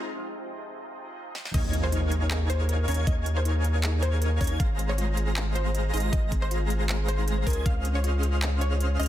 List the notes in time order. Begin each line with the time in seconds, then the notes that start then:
Already playing: C3 F3 G#3 C4 D#4 F4 G#4
1.35 snare
1.45 snare
1.54 D#2 A#3 D#4 A#4 C#5 D#5 F5 G#5 G#6, kick, closed hi-hat, crash, impact
1.73 A#3, closed hi-hat
1.83 G#4 C5
1.92 D#4, closed hi-hat
2.11 D#4, closed hi-hat
2.22 D#4
2.31 G#4, clap, closed hi-hat
2.50 D#4 C5, closed hi-hat
2.60 G#4
2.69 A#4, closed hi-hat
2.88 D#2 C#4 D#4 A#4 C#5 F5 G#5 G#6, closed hi-hat, open hi-hat
2.94 D#4, closed hi-hat
3.07 D#2 A#3 D#4 A#4 C#5 D#5 F5 G#5 G#6, kick, closed hi-hat
3.26 A#3, closed hi-hat
3.36 G#4 C5
3.45 D#4, closed hi-hat
3.64 D#4, closed hi-hat
3.75 D#4
3.83 G#4, clap, closed hi-hat
4.02 D#4 C5, closed hi-hat
4.13 G#4
4.22 A#4, closed hi-hat
4.41 D#2 C#4 D#4 A#4 C#5 F5 G#5 G#6, kick, closed hi-hat, open hi-hat
4.47 D#4, closed hi-hat
4.60 G#1 G#3 C4 G#4 C5 F5 A#5 A#6, kick, closed hi-hat
4.79 C4, closed hi-hat
4.89 C5 C#5
4.98 F4, closed hi-hat
5.17 F4, closed hi-hat
5.28 F4
5.36 C5, clap, closed hi-hat
5.55 F4 C5, closed hi-hat
5.66 C5
5.75 D#5, closed hi-hat
5.93 G#1 G#3 D#4 G#4 C5 D#5 F5 A#5 A#6, closed hi-hat, open hi-hat
6.00 closed hi-hat
6.04 F4
6.13 G#1 G#3 C4 G#4 C5 D#5 F5 A#5 A#6, kick, closed hi-hat
6.32 C4, kick, closed hi-hat
6.42 C5
6.51 F4, closed hi-hat
6.70 F4, closed hi-hat
6.81 F4
6.89 C5, clap, closed hi-hat
7.08 G#4 C5, closed hi-hat
7.19 D#4
7.28 G#4, closed hi-hat
7.38 C5
7.47 C#2 C#4 G#4 A#4 C5 D#5 G#5 G#6, kick, closed hi-hat, open hi-hat
7.53 F4, closed hi-hat
7.66 C#2 C4 C#4 G#4 C5 D#5 F5 F6, kick, closed hi-hat
7.85 C4, closed hi-hat
7.95 C5 C#5
8.04 F4, closed hi-hat
8.23 F4, closed hi-hat
8.33 F4
8.42 C5, clap, closed hi-hat
8.61 F4 C#5, closed hi-hat
8.72 C5
8.80 C#5, closed hi-hat
8.99 C#2 C#4 G#4 C5 D#5 F5 F6, closed hi-hat, open hi-hat